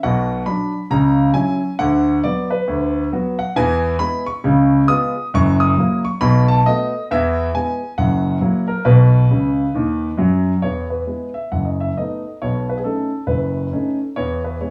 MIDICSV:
0, 0, Header, 1, 2, 480
1, 0, Start_track
1, 0, Tempo, 442152
1, 49, Time_signature, 4, 2, 24, 8
1, 15963, End_track
2, 0, Start_track
2, 0, Title_t, "Grand piano"
2, 0, Program_c, 0, 0
2, 35, Note_on_c, 0, 78, 92
2, 36, Note_on_c, 0, 35, 70
2, 37, Note_on_c, 0, 47, 76
2, 447, Note_off_c, 0, 78, 0
2, 448, Note_off_c, 0, 35, 0
2, 449, Note_off_c, 0, 47, 0
2, 499, Note_on_c, 0, 83, 77
2, 504, Note_on_c, 0, 62, 51
2, 505, Note_on_c, 0, 54, 40
2, 774, Note_off_c, 0, 54, 0
2, 774, Note_off_c, 0, 62, 0
2, 918, Note_off_c, 0, 83, 0
2, 981, Note_on_c, 0, 49, 74
2, 984, Note_on_c, 0, 37, 75
2, 986, Note_on_c, 0, 82, 96
2, 1398, Note_off_c, 0, 49, 0
2, 1400, Note_off_c, 0, 37, 0
2, 1401, Note_off_c, 0, 82, 0
2, 1449, Note_on_c, 0, 54, 49
2, 1452, Note_on_c, 0, 80, 95
2, 1459, Note_on_c, 0, 61, 45
2, 1473, Note_on_c, 0, 64, 58
2, 1722, Note_off_c, 0, 54, 0
2, 1729, Note_off_c, 0, 61, 0
2, 1739, Note_off_c, 0, 64, 0
2, 1872, Note_off_c, 0, 80, 0
2, 1941, Note_on_c, 0, 78, 109
2, 1942, Note_on_c, 0, 38, 78
2, 1944, Note_on_c, 0, 50, 88
2, 2357, Note_off_c, 0, 38, 0
2, 2357, Note_off_c, 0, 78, 0
2, 2358, Note_off_c, 0, 50, 0
2, 2427, Note_on_c, 0, 74, 92
2, 2435, Note_on_c, 0, 54, 46
2, 2439, Note_on_c, 0, 59, 50
2, 2444, Note_on_c, 0, 66, 55
2, 2684, Note_off_c, 0, 74, 0
2, 2700, Note_off_c, 0, 54, 0
2, 2702, Note_off_c, 0, 59, 0
2, 2706, Note_off_c, 0, 66, 0
2, 2719, Note_on_c, 0, 71, 77
2, 2906, Note_on_c, 0, 38, 74
2, 2908, Note_on_c, 0, 50, 63
2, 3288, Note_off_c, 0, 71, 0
2, 3318, Note_off_c, 0, 38, 0
2, 3319, Note_off_c, 0, 50, 0
2, 3395, Note_on_c, 0, 54, 46
2, 3395, Note_on_c, 0, 59, 51
2, 3398, Note_on_c, 0, 66, 65
2, 3659, Note_off_c, 0, 54, 0
2, 3659, Note_off_c, 0, 59, 0
2, 3661, Note_off_c, 0, 66, 0
2, 3677, Note_on_c, 0, 78, 86
2, 3839, Note_off_c, 0, 78, 0
2, 3866, Note_on_c, 0, 52, 91
2, 3869, Note_on_c, 0, 40, 85
2, 3869, Note_on_c, 0, 80, 104
2, 4277, Note_off_c, 0, 52, 0
2, 4279, Note_off_c, 0, 40, 0
2, 4279, Note_off_c, 0, 80, 0
2, 4331, Note_on_c, 0, 56, 44
2, 4333, Note_on_c, 0, 83, 106
2, 4336, Note_on_c, 0, 59, 50
2, 4345, Note_on_c, 0, 64, 53
2, 4593, Note_off_c, 0, 83, 0
2, 4601, Note_off_c, 0, 56, 0
2, 4604, Note_off_c, 0, 59, 0
2, 4610, Note_off_c, 0, 64, 0
2, 4630, Note_on_c, 0, 85, 97
2, 4820, Note_on_c, 0, 49, 82
2, 4824, Note_on_c, 0, 37, 76
2, 5201, Note_off_c, 0, 85, 0
2, 5232, Note_off_c, 0, 49, 0
2, 5235, Note_off_c, 0, 37, 0
2, 5299, Note_on_c, 0, 56, 58
2, 5299, Note_on_c, 0, 87, 106
2, 5303, Note_on_c, 0, 59, 59
2, 5308, Note_on_c, 0, 65, 52
2, 5565, Note_off_c, 0, 56, 0
2, 5569, Note_off_c, 0, 59, 0
2, 5572, Note_off_c, 0, 65, 0
2, 5711, Note_off_c, 0, 87, 0
2, 5797, Note_on_c, 0, 30, 82
2, 5799, Note_on_c, 0, 42, 95
2, 5806, Note_on_c, 0, 85, 123
2, 6050, Note_off_c, 0, 85, 0
2, 6080, Note_on_c, 0, 87, 95
2, 6201, Note_off_c, 0, 30, 0
2, 6202, Note_off_c, 0, 42, 0
2, 6267, Note_on_c, 0, 54, 51
2, 6286, Note_on_c, 0, 58, 49
2, 6289, Note_on_c, 0, 64, 47
2, 6489, Note_off_c, 0, 87, 0
2, 6531, Note_off_c, 0, 54, 0
2, 6545, Note_off_c, 0, 58, 0
2, 6546, Note_off_c, 0, 64, 0
2, 6564, Note_on_c, 0, 85, 94
2, 6720, Note_off_c, 0, 85, 0
2, 6739, Note_on_c, 0, 83, 111
2, 6742, Note_on_c, 0, 47, 86
2, 6743, Note_on_c, 0, 35, 82
2, 6994, Note_off_c, 0, 83, 0
2, 7039, Note_on_c, 0, 81, 94
2, 7151, Note_off_c, 0, 47, 0
2, 7152, Note_off_c, 0, 35, 0
2, 7196, Note_off_c, 0, 81, 0
2, 7232, Note_on_c, 0, 75, 97
2, 7238, Note_on_c, 0, 57, 48
2, 7246, Note_on_c, 0, 59, 51
2, 7250, Note_on_c, 0, 66, 62
2, 7498, Note_off_c, 0, 57, 0
2, 7504, Note_off_c, 0, 59, 0
2, 7507, Note_off_c, 0, 66, 0
2, 7637, Note_off_c, 0, 75, 0
2, 7718, Note_on_c, 0, 40, 90
2, 7719, Note_on_c, 0, 52, 81
2, 7724, Note_on_c, 0, 76, 97
2, 8120, Note_off_c, 0, 40, 0
2, 8121, Note_off_c, 0, 52, 0
2, 8123, Note_off_c, 0, 76, 0
2, 8191, Note_on_c, 0, 56, 39
2, 8194, Note_on_c, 0, 80, 92
2, 8201, Note_on_c, 0, 59, 46
2, 8202, Note_on_c, 0, 64, 45
2, 8452, Note_off_c, 0, 56, 0
2, 8460, Note_off_c, 0, 59, 0
2, 8461, Note_off_c, 0, 64, 0
2, 8597, Note_off_c, 0, 80, 0
2, 8661, Note_on_c, 0, 78, 91
2, 8663, Note_on_c, 0, 30, 62
2, 8669, Note_on_c, 0, 42, 69
2, 9070, Note_off_c, 0, 30, 0
2, 9074, Note_off_c, 0, 42, 0
2, 9130, Note_on_c, 0, 54, 52
2, 9130, Note_on_c, 0, 58, 46
2, 9139, Note_on_c, 0, 64, 51
2, 9321, Note_off_c, 0, 78, 0
2, 9397, Note_off_c, 0, 54, 0
2, 9397, Note_off_c, 0, 58, 0
2, 9403, Note_off_c, 0, 64, 0
2, 9419, Note_on_c, 0, 70, 76
2, 9583, Note_off_c, 0, 70, 0
2, 9605, Note_on_c, 0, 35, 72
2, 9607, Note_on_c, 0, 71, 83
2, 9609, Note_on_c, 0, 47, 86
2, 10020, Note_off_c, 0, 35, 0
2, 10022, Note_off_c, 0, 47, 0
2, 10097, Note_on_c, 0, 49, 56
2, 10103, Note_on_c, 0, 37, 59
2, 10459, Note_off_c, 0, 49, 0
2, 10463, Note_off_c, 0, 37, 0
2, 10579, Note_on_c, 0, 51, 63
2, 10590, Note_on_c, 0, 39, 69
2, 10940, Note_off_c, 0, 51, 0
2, 10947, Note_off_c, 0, 39, 0
2, 11046, Note_on_c, 0, 42, 71
2, 11055, Note_on_c, 0, 54, 71
2, 11090, Note_off_c, 0, 71, 0
2, 11412, Note_off_c, 0, 42, 0
2, 11418, Note_off_c, 0, 54, 0
2, 11532, Note_on_c, 0, 73, 77
2, 11534, Note_on_c, 0, 40, 53
2, 11542, Note_on_c, 0, 52, 46
2, 11789, Note_off_c, 0, 73, 0
2, 11834, Note_on_c, 0, 71, 43
2, 11947, Note_off_c, 0, 40, 0
2, 11951, Note_off_c, 0, 52, 0
2, 12015, Note_on_c, 0, 56, 33
2, 12021, Note_on_c, 0, 59, 28
2, 12030, Note_on_c, 0, 64, 34
2, 12246, Note_off_c, 0, 71, 0
2, 12283, Note_off_c, 0, 56, 0
2, 12287, Note_off_c, 0, 59, 0
2, 12294, Note_off_c, 0, 64, 0
2, 12312, Note_on_c, 0, 76, 59
2, 12473, Note_off_c, 0, 76, 0
2, 12504, Note_on_c, 0, 42, 50
2, 12504, Note_on_c, 0, 78, 62
2, 12505, Note_on_c, 0, 30, 44
2, 12648, Note_on_c, 0, 75, 43
2, 12654, Note_off_c, 0, 78, 0
2, 12800, Note_off_c, 0, 75, 0
2, 12816, Note_on_c, 0, 76, 62
2, 12915, Note_off_c, 0, 30, 0
2, 12915, Note_off_c, 0, 42, 0
2, 12967, Note_off_c, 0, 76, 0
2, 13000, Note_on_c, 0, 57, 33
2, 13000, Note_on_c, 0, 75, 61
2, 13006, Note_on_c, 0, 63, 38
2, 13011, Note_on_c, 0, 59, 32
2, 13262, Note_off_c, 0, 57, 0
2, 13267, Note_off_c, 0, 63, 0
2, 13270, Note_off_c, 0, 59, 0
2, 13405, Note_off_c, 0, 75, 0
2, 13480, Note_on_c, 0, 73, 71
2, 13483, Note_on_c, 0, 35, 47
2, 13484, Note_on_c, 0, 47, 55
2, 13729, Note_off_c, 0, 73, 0
2, 13781, Note_on_c, 0, 71, 57
2, 13867, Note_off_c, 0, 71, 0
2, 13869, Note_on_c, 0, 68, 46
2, 13888, Note_off_c, 0, 35, 0
2, 13889, Note_off_c, 0, 47, 0
2, 13940, Note_on_c, 0, 69, 58
2, 13945, Note_on_c, 0, 57, 33
2, 13950, Note_on_c, 0, 61, 34
2, 13951, Note_on_c, 0, 63, 33
2, 13957, Note_off_c, 0, 68, 0
2, 14213, Note_off_c, 0, 57, 0
2, 14217, Note_off_c, 0, 61, 0
2, 14217, Note_off_c, 0, 63, 0
2, 14356, Note_off_c, 0, 69, 0
2, 14405, Note_on_c, 0, 30, 50
2, 14405, Note_on_c, 0, 71, 64
2, 14408, Note_on_c, 0, 42, 47
2, 14829, Note_off_c, 0, 30, 0
2, 14830, Note_off_c, 0, 42, 0
2, 14901, Note_on_c, 0, 61, 38
2, 14902, Note_on_c, 0, 57, 33
2, 14902, Note_on_c, 0, 63, 40
2, 15083, Note_off_c, 0, 71, 0
2, 15172, Note_off_c, 0, 57, 0
2, 15172, Note_off_c, 0, 61, 0
2, 15173, Note_off_c, 0, 63, 0
2, 15374, Note_on_c, 0, 73, 83
2, 15377, Note_on_c, 0, 52, 55
2, 15379, Note_on_c, 0, 40, 59
2, 15640, Note_off_c, 0, 73, 0
2, 15680, Note_on_c, 0, 71, 55
2, 15799, Note_off_c, 0, 52, 0
2, 15800, Note_off_c, 0, 40, 0
2, 15846, Note_off_c, 0, 71, 0
2, 15856, Note_on_c, 0, 64, 36
2, 15858, Note_on_c, 0, 56, 37
2, 15860, Note_on_c, 0, 73, 52
2, 15861, Note_on_c, 0, 59, 36
2, 15963, Note_off_c, 0, 56, 0
2, 15963, Note_off_c, 0, 59, 0
2, 15963, Note_off_c, 0, 64, 0
2, 15963, Note_off_c, 0, 73, 0
2, 15963, End_track
0, 0, End_of_file